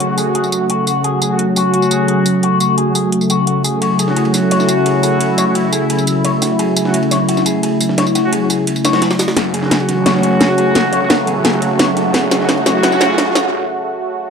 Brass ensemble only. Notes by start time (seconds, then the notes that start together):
0.09 F#3 C#4 F#4
1.30 F#3 C#4 F#4
1.48 F#3 C#4 F#4
2.86 F#3 C#4 F#4
4.08 F#3 C#4 F#4
4.25 F#3 C#4 F#4
5.47 F#3 C#4 F#4
5.64 F#3 C#4 F#4
6.85 F#3 C#4 F#4
8.24 F#3 C#4 F#4
8.41 F#3 C#4 F#4
8.93 F#3 C#4 F#4
9.63 F#3 C#4 F#4
9.80 F#3 C#4 F#4
11.01 F#3 C#4 F#4
11.19 F#3 C#4 F#4
12.40 F#3 C#4 F#4
12.57 F#3 C#4 F#4